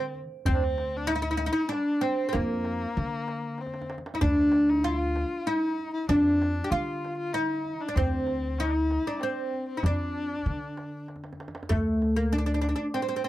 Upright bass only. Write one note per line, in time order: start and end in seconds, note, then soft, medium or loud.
0.00 0.22 D3 medium
0.48 1.48 D2 medium
2.35 2.85 F2 medium
2.97 3.97 D3 medium
4.22 5.23 D2 medium
6.09 6.59 F2 medium
6.71 7.72 D3 medium
7.96 8.96 D2 medium
9.84 10.34 F2 medium
10.46 11.47 D3 medium
11.72 12.72 D2 medium